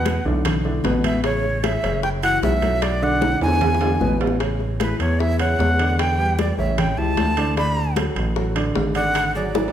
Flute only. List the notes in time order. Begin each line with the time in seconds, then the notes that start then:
Already playing: F#5
1.05 E5
1.24 C#5
1.64 E5
2.03 G5
2.23 F#5
2.43 E5
2.82 D5
3.03 F#5
3.43 G#5
4.81 B4
5.00 C#5
5.19 E5
5.39 F#5
5.99 G5
6.39 D5
6.58 E5
6.79 G5
6.98 A5
7.57 B5
8.95 F#5
9.35 D5